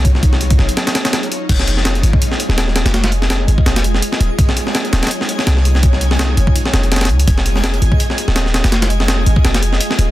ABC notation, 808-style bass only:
X:1
M:4/4
L:1/16
Q:"Swing 16ths" 1/4=166
K:Fphr
V:1 name="808-style bass" clef=bass
C,,6 G,,, z8 z | F,,,6 A,,, z4 E,,,4 F,,,- | F,,,6 A,,, z F,,,4 z2 E,,, z | z6 E,,, z4 z C,,4- |
C,,6 G,,, z3 F,,,4 D,,2 | F,,,6 A,,, z4 E,,,4 F,,,- | F,,,6 A,,, z F,,,4 z2 E,,, z |]